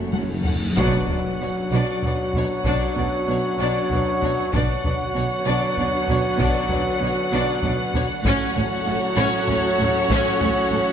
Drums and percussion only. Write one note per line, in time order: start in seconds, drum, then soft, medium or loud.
0.13 taiko high medium
0.45 taiko low medium
0.77 taiko medium
1.08 taiko low soft
2.02 taiko low medium
2.33 taiko low soft
2.64 taiko medium
2.97 taiko low soft
3.90 taiko low soft
4.22 taiko low soft
4.53 taiko medium
4.84 taiko low soft
5.77 taiko low medium
6.08 taiko low soft
6.38 taiko medium
6.69 taiko low soft
7.62 taiko low medium
7.94 taiko low medium
8.25 taiko medium
8.56 taiko low medium
9.48 taiko low medium
9.79 taiko low medium
10.10 taiko medium
10.41 taiko low medium